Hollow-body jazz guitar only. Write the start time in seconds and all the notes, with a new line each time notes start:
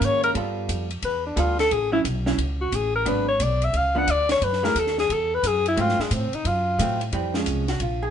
Already playing: D#3 A#3 C#4
0.34 G3 B3 F4 A4
1.36 G3 B3 F4 A4
1.92 F#3 C#4 E4
2.26 F#3 C#4 E4
3.05 F#3 B3 D4
3.95 F3 B3 D4
4.63 F#3 A3 E4 G#4
5.77 F#3 A3 C4
6.79 F#3 A3 C4
7.13 E3 G3 C4
7.35 F3 G#3 C#4
7.69 F#4
7.82 F4
8.03 G#4